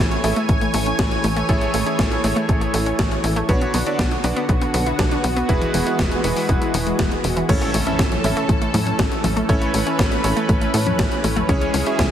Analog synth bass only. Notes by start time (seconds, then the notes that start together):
0.00 A1
0.24 A1
0.49 A1
0.74 A1
0.99 A1
1.24 A1
1.49 A1
1.74 A1
1.99 A1
2.24 A1
2.49 A1
2.74 A1
2.99 A1
3.24 A1
3.49 B1
3.74 B1
3.99 B1
4.24 B1
4.49 B1
4.74 B1
4.99 B1
5.24 B1
5.49 E1
5.74 E1
5.99 E1
6.24 E1
6.49 E1
6.74 E1
6.99 E1
7.24 E1
7.49 A1
7.74 A1
7.99 A1
8.24 A1
8.49 A1
8.74 A2
8.99 A1
9.24 A1
9.49 A1
9.74 A1
9.99 A1
10.24 A1
10.49 A1
10.74 A2
10.99 A1
11.24 A1
11.49 C#2
11.74 C#2
11.99 C#2